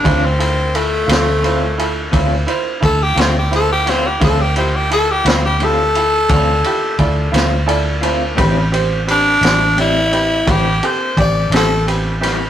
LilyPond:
<<
  \new Staff \with { instrumentName = "Tenor saxophone" } { \time 12/8 \key d \dorian \tempo 4. = 58 d'16 c'8. a2 r4 a'16 g'16 c'16 g'16 a'16 g'16 c'16 g'16 | a'16 g'16 c'16 g'16 a'16 g'16 c'16 g'16 a'2. r4 | r4 d'4 e'4 g'8 c''8 d''8 a'8 r4 | }
  \new Staff \with { instrumentName = "Upright piano" } { \time 12/8 \key d \dorian <e' f' c''>8 <e' f' a'>8 <e' f' a'>8 <e' f' c''>8 <e' f' c''>8 <e' f' a'>8 <e' f' c''>8 <e' f' c''>8 <e' f' a'>8 <e' f' a'>8 <e' f' c''>8 <e' f' b'>8 | <e' f' c''>8 <e' f' g'>8 <e' f' a'>8 <e' f' b'>8 <e' f' g'>8 <e' f' a'>8 <e' f' d''>8 <e' f' g'>8 <e' f' d''>8 <e' f' c''>8 <e' f' a' d''>8 <e' f' c'' a''>8 | <c' g' b'>8 <c' g' c''>8 <c' g' b'>8 <c' g' d''>8 <c' g' d''>8 <c' g' b'>8 <c' g' b'>8 <c' g' a'>8 <c' g' d''>8 <c' g' a'>8 <c' g' b'>8 <c' g' b'>8 | }
  \new Staff \with { instrumentName = "Clean electric guitar" } { \time 12/8 \key d \dorian <d a c' f'>8 r4 <a c' f'>8 <d a c' f'>8 r8 <d a c' f'>8 r4 <a c' f'>8 r8 <a c' f'>8 | <d a c' f'>8 r4 <a c' f'>8 <d a c' f'>8 r8 <d a c' f'>8 r4 <a c' f'>8 r8 <a c' f'>8 | <a, g c' e'>8 r4 <g c' e'>8 <a, g c' e'>8 r8 <a, g c' e'>8 r4 <g c' e'>8 r8 <g c' e'>8 | }
  \new Staff \with { instrumentName = "Fingered electric bass" } { \clef bass \time 12/8 \key d \dorian d,4. d,4. d,8 r8 d,8 d,4. | d,4. d,4. d,8 r8 d,8 d,4. | a,,4. a,,4. a,,8 r8 a,,8 a,,4. | }
  \new DrumStaff \with { instrumentName = "Drums" } \drummode { \time 12/8 <bd cymr>8 cymr8 cymr8 <cymr sn>8 cymr8 cymr8 <bd cymr>8 cymr8 <bd cymr>8 <cymr sn>8 cymr8 <cymr sn>8 | <bd cymr>8 cymr8 cymr8 <cymr sn>8 cymr8 cymr8 <bd cymr>8 cymr8 <bd cymr>8 <cymr sn>8 cymr8 cymr8 | <bd cymr>8 cymr8 cymr8 <cymr sn>8 cymr8 cymr8 <bd cymr>8 cymr8 <bd cymr>8 <cymr sn>8 cymr8 <cymr sn>8 | }
>>